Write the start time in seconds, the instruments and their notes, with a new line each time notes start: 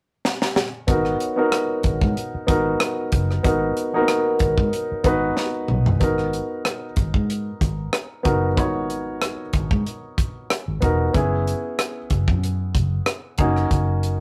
0.25 snare
0.42 snare
0.56 snare
0.87 fingered electric bass G#1, grand piano B3 D#4 F#4 A#4, kick, closed hi-hat
1.05 cross-stick
1.20 vibraphone C#5, closed hi-hat
1.36 grand piano B3 D#4 F#4 A#4
1.42 vibraphone F#5
1.52 cross-stick, closed hi-hat
1.83 fingered electric bass G#1, kick, closed hi-hat
2.01 fingered electric bass G#2, kick
2.17 closed hi-hat
2.35 muted fingered electric bass stroke
2.47 fingered electric bass G#1, grand piano B3 D#4 F#4 A#4, kick, closed hi-hat
2.80 cross-stick, closed hi-hat
3.12 fingered electric bass F#1, kick, closed hi-hat
3.31 cross-stick
3.43 fingered electric bass G#1, grand piano B3 D#4 F#4 A#4, kick, closed hi-hat
3.77 closed hi-hat
3.93 grand piano A#3 D#4 F#4 A#4
4.00 grand piano B3
4.08 vibraphone A#4, cross-stick, closed hi-hat
4.32 vibraphone C#5
4.39 fingered electric bass G#1, kick, closed hi-hat
4.58 fingered electric bass G#2, kick
4.73 closed hi-hat
4.92 muted fingered electric bass stroke
5.04 fingered electric bass G#1, grand piano B3 D#4 F#4 B4, kick, closed hi-hat
5.37 snare
5.68 fingered electric bass B1, mid tom
5.86 floor tom
6.00 fingered electric bass G#1, grand piano B3 D#4 F#4 A#4, kick, closed hi-hat
6.18 cross-stick
6.33 closed hi-hat
6.65 cross-stick, closed hi-hat
6.96 fingered electric bass G#1, kick, closed hi-hat
7.14 fingered electric bass G#2, kick
7.30 closed hi-hat
7.61 fingered electric bass G#1, kick, closed hi-hat
7.93 cross-stick, closed hi-hat
8.23 fingered electric bass F#1, grand piano B3 D#4 F#4 A#4, kick, closed hi-hat
8.56 fingered electric bass G#1, grand piano B3 D#4 F#4 C#5, kick, closed hi-hat
8.90 closed hi-hat
9.22 cross-stick, closed hi-hat
9.53 fingered electric bass G#1, kick, closed hi-hat
9.71 fingered electric bass G#2, kick
9.86 closed hi-hat
10.18 kick, closed hi-hat
10.50 cross-stick, closed hi-hat
10.68 fingered electric bass G#1
10.81 fingered electric bass E1, grand piano B3 D#4 F#4 A#4, kick, closed hi-hat
11.13 fingered electric bass F#1, grand piano B3 C#4 E4 G#4, kick, closed hi-hat
11.47 closed hi-hat
11.79 cross-stick, closed hi-hat
12.10 fingered electric bass F#1, kick, closed hi-hat
12.28 fingered electric bass F#2, kick
12.44 closed hi-hat
12.75 fingered electric bass F#1, kick, closed hi-hat
13.06 cross-stick, closed hi-hat
13.38 fingered electric bass F#1, grand piano A#3 C#4 D#4 F#4, kick, closed hi-hat
13.57 cross-stick
13.71 fingered electric bass F#1, kick, closed hi-hat
14.03 closed hi-hat